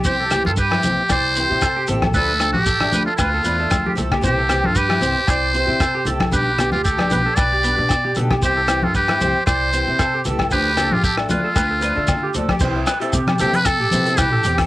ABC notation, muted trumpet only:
X:1
M:4/4
L:1/16
Q:"Swing 16ths" 1/4=115
K:C
V:1 name="Muted trumpet"
G3 F G4 c6 z2 | A3 G4 F F6 z2 | G3 F G4 c6 z2 | G3 F G4 d6 z2 |
G3 F G4 c6 z2 | G3 F G2 F8 z2 | z6 G B A4 G3 z |]